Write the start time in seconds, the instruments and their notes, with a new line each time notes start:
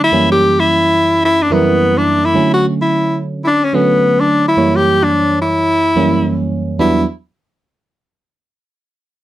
Already playing: fm electric piano D3 F#3 A3 D4
0.04 tenor saxophone E4
0.12 fm electric piano F#2 E3 G3 A#3 C#4
0.32 tenor saxophone G4
0.60 tenor saxophone E4
1.25 tenor saxophone E4
1.43 tenor saxophone D4
1.50 fm electric piano F#2 E3 G3 E4 A#4, tenor saxophone B3
1.98 tenor saxophone D4
2.25 tenor saxophone E4
2.34 fm electric piano D3 F#3 A3 C#4
2.54 tenor saxophone F#4
2.82 tenor saxophone E4
3.45 tenor saxophone D4 E4
3.64 tenor saxophone C#4
3.73 fm electric piano D3 F#3 A3 C#4, tenor saxophone B3
4.20 tenor saxophone D4
4.48 tenor saxophone E4
4.57 fm electric piano F#2 E3 G3 A#3 C#5
4.76 tenor saxophone G4
5.03 tenor saxophone D4
5.41 tenor saxophone E4
5.96 fm electric piano F#2 E3 G3 A#3 C#4
6.79 fm electric piano E2 F#3 G3 B3 D4, tenor saxophone E4